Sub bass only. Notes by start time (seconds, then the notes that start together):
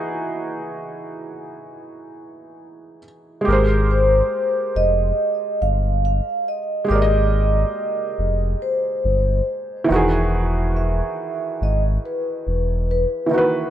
3.47 G#1
4.76 F1
5.62 G1
6.90 G#1
8.18 F1
9.04 G1
9.90 E1
11.61 G#1
12.47 E1